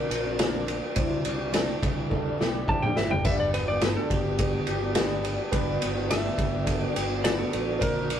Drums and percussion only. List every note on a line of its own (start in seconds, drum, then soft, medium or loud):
0.11 ride medium
0.39 snare loud
0.39 ride medium
0.68 ride medium
0.96 kick loud
0.96 ride medium
1.25 ride medium
1.54 snare loud
1.54 ride loud
1.83 kick medium
1.83 ride medium
2.11 kick medium
2.41 snare medium
2.68 kick medium
2.83 mid tom medium
2.96 snare medium
3.10 floor tom medium
3.25 kick loud
3.25 ride medium
3.25 splash medium
3.54 ride medium
3.81 snare loud
3.81 ride medium
4.10 kick medium
4.10 ride medium
4.39 kick medium
4.39 ride medium
4.67 ride medium
4.95 snare loud
4.95 ride loud
5.25 ride medium
5.53 kick loud
5.53 ride medium
5.82 ride medium
6.11 snare loud
6.11 ride loud
6.38 kick medium
6.38 ride medium
6.67 kick medium
6.67 ride medium
6.96 ride medium
7.25 snare loud
7.25 ride loud
7.53 ride medium
7.81 kick loud
7.81 ride medium
8.10 ride medium